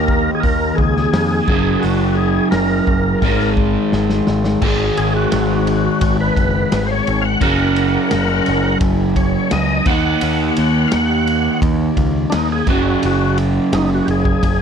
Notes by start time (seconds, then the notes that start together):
Already playing: D#2 D#3 A#3 D#4 A#4
0.08 kick
0.35 G#4
0.40 D#2 A#4, kick, open hi-hat
0.75 C#2 G#4, kick
0.97 snare
1.13 F2, snare, open hi-hat
1.48 F#1 F#2 C#3 F#3, kick
1.80 F#4, open hi-hat
1.84 F#1
2.15 G#4
2.51 F#1 A#4, snare, open hi-hat
2.87 F#1, kick
3.22 G#1 G#2 D#3, kick, open hi-hat
3.26 G#3
3.39 snare
3.57 kick
3.92 G#1, snare
4.10 snare
4.27 G#1, snare
4.44 snare
4.62 G#1 G#2 D#3 G#3, kick, crash
4.97 G#1 G#4, ride
5.16 F#4
5.32 G#1, snare, ride
5.67 ride
6.01 G#1, kick, ride
6.21 B4
6.36 F#1, kick, ride
6.72 G#1, snare, ride
6.87 C5
6.91 C#5
7.07 G#1, ride
7.22 F5 F#5
7.41 F#1 F#2 C#3 F#3 A#4 F#5, kick, ride
7.76 ride
8.11 F#1, snare, ride
8.46 F#1, snare, ride
8.81 F#1, kick, ride
9.16 C#5, kick, ride
9.51 C#2 D#5, snare, ride
9.86 D#2 D#3 A#3 D#4 F#5, kick, ride
10.21 D#2, ride
10.56 D#2, ride
10.88 F5, ride
10.92 D#2 F#5, snare
11.27 ride
11.62 D#2, kick, ride
11.97 C#2, kick, ride
12.30 D#2 D4, snare, ride
12.34 D#4
12.52 G#4
12.67 F#1 F#2 C#3 F#3 F#4, kick, ride
13.03 F#1 F#4, ride
13.38 ride
13.73 F#1 D#4, snare, ride
13.95 F#4
14.05 F#1 G4, ride
14.11 G#4
14.25 kick
14.43 F#1, kick, ride